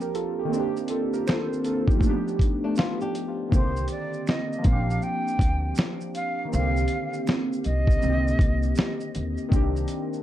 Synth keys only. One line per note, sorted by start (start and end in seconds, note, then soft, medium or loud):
0.00 0.45 F3 medium
0.00 0.47 A#3 medium
0.00 0.49 C4 medium
0.00 0.50 D4 medium
0.00 0.02 G4 medium
0.00 0.14 G4 medium
0.00 0.14 A#4 medium
0.15 0.38 F4 medium
0.15 0.38 A4 medium
0.39 0.58 G4 medium
0.45 1.95 D#3 medium
0.45 1.97 A#3 medium
0.52 1.99 C4 medium
0.52 0.91 D4 medium
0.59 0.93 G4 medium
0.90 1.13 F4 medium
0.90 1.13 A4 medium
1.13 1.27 G4 medium
1.13 1.26 A#4 medium
1.27 1.63 A4 medium
1.27 1.63 C5 medium
1.65 1.88 F4 medium
1.65 1.88 A4 medium
1.89 2.25 D#4 medium
1.89 2.08 G4 medium
1.95 3.46 F3 medium
1.95 3.47 A3 medium
2.02 2.11 A#3 soft
2.02 3.51 D4 medium
2.09 3.53 B3 medium
2.09 3.53 G4 medium
3.49 4.63 D#3 medium
3.49 4.61 A#3 medium
3.49 4.64 C4 medium
3.54 4.66 D3 medium
3.54 4.67 G4 medium
4.58 6.45 F3 medium
4.58 6.47 A#3 medium
4.65 6.49 C4 medium
4.65 4.75 C#4 soft
4.72 6.54 D4 medium
4.72 6.52 G4 medium
6.45 7.95 D#3 medium
6.45 7.97 A#3 medium
6.52 7.94 D3 medium
6.52 7.99 C4 medium
6.59 8.03 G4 medium
7.95 8.05 D3 soft
7.95 9.47 A#3 medium
8.02 9.47 D#3 medium
8.02 9.49 C4 medium
8.06 9.51 D3 medium
8.06 9.53 G4 medium
9.48 10.23 D#3 medium
9.48 10.23 A#3 medium
9.48 10.23 C4 medium
9.54 10.23 D4 medium
9.54 10.23 G4 medium